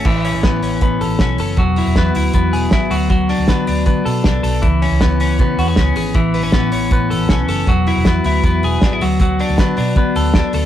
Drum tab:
CC |x-------|--------|--------|--------|
HH |-oxoxoxo|xoxoxoxo|xoxoxoxo|xoxoxoxo|
SD |--o---o-|--o---o-|--o---o-|--o---o-|
BD |o-o-o-o-|o-o-o-o-|o-o-o-o-|o-o-o-o-|

CC |--------|--------|--------|
HH |xoxoxoxo|xoxoxoxo|xoxoxoxo|
SD |--o---o-|--o---o-|--o---o-|
BD |o-o-o-o-|o-o-o-o-|o-o-o-o-|